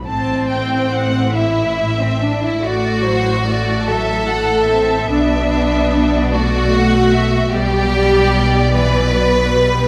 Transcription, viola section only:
X:1
M:12/8
L:1/8
Q:3/8=49
K:Ador
V:1 name="Viola section" clef=bass
z6 A, F, A, F, A, C | B,3 A,3 G,3 E, F, G, |]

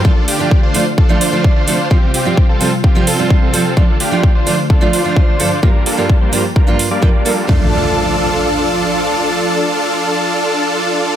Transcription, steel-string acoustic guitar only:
X:1
M:4/4
L:1/16
Q:1/4=129
K:Dm
V:1 name="Steel-string acoustic guitar"
[F,A,DF] z2 [F,A,DF] z2 [F,A,DF] z2 [F,A,DF]2 [F,A,DF]3 [C,F,A,DA] z | [C,F,G,CF] z2 [C,F,G,CF] z2 [C,F,G,CF] z2 [C,F,G,CF]2 [C,F,G,CF]3 [F,G,CA] z | [F,A,DF] z2 [F,A,DF] z2 [F,A,DF] z2 [F,A,DF]2 [F,A,DF]3 [G,,F,A,DA] z | [G,,G,B,DF] z2 [G,,G,B,DF] z2 [G,,G,B,DF] z2 [G,,G,B,DF]2 z [G,,G,B,DF] z [G,B,DA] z |
[F,A,DF]16- | [F,A,DF]16 |]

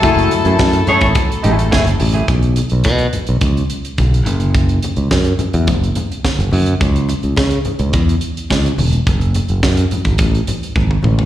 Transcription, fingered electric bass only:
X:1
M:4/4
L:1/16
Q:1/4=106
K:F#dor
V:1 name="Fingered electric bass" clef=bass
F,,,2 z F,, F,,2 z G,,, z2 A,,,2 F,,,2 A,,,2 | B,,,3 B,,, B,,2 z B,,, C,,2 z2 B,,,2 F,,,2- | F,,,3 C,, F,,2 z E,, F,,,2 z3 F,,, F,,2 | C,,3 C,, C,2 z C,, E,,2 z2 C,,2 E,,,2 |
F,,,3 F,,, F,,2 z G,,, A,,,2 z2 G,,,2 A,,,2 |]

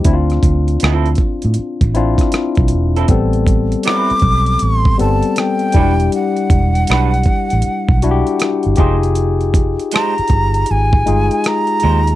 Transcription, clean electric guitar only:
X:1
M:4/4
L:1/16
Q:"Swing 16ths" 1/4=79
K:Am
V:1 name="Clean electric guitar"
z4 [F,CEA] z8 z2 [F,CEA] | z4 [G,CEB] z8 z [G,D^FB] z | z4 [G,D^FB] z8 z [_A,_EGc] z | z4 [_A,_EGc] z8 z [A,EGc] z |]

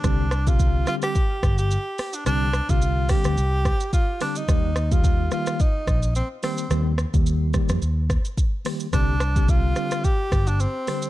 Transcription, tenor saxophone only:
X:1
M:4/4
L:1/16
Q:"Swing 16ths" 1/4=108
K:Cm
V:1 name="Tenor saxophone"
D3 F3 F G4 G4 D | D3 F3 G6 F2 D E- | E3 F3 F2 E4 C2 C2- | C2 z12 z2 |
D4 F4 G3 D C4 |]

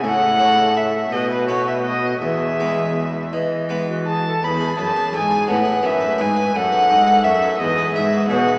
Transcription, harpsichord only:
X:1
M:6/8
L:1/16
Q:3/8=56
K:E
V:1 name="Harpsichord"
z2 [A,Ec]4 z2 [A,B,B]4 | z2 [G,B,B]6 [G,B,B]4 | z G B G A G B, G B, B G B | z B d B c B z B e B c B |]
V:2 name="Harpsichord" clef=bass
A,,6 B,,6 | E,,6 E,6 | E,,2 F,,2 G,,2 A,,2 F,,2 G,,2 | F,,2 G,,2 F,,2 E,,2 G,,2 B,,2 |]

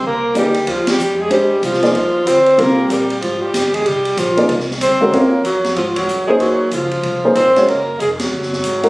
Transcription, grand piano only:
X:1
M:4/4
L:1/8
Q:"Swing" 1/4=188
K:Ebmix
V:1 name="Grand piano"
z2 [B,EA=d] z4 z | [A,=DGc] z2 [B,EA=d] z4 | [G,CFB]3 z4 z | z3 [B,EA=d] z3 [A,_D^FB] |
[CFBd] z6 [B,EAc]- | [B,EAc]2 z3 [B,EAc] z [A,D_Gd] | z6 z [A,D_GB] |]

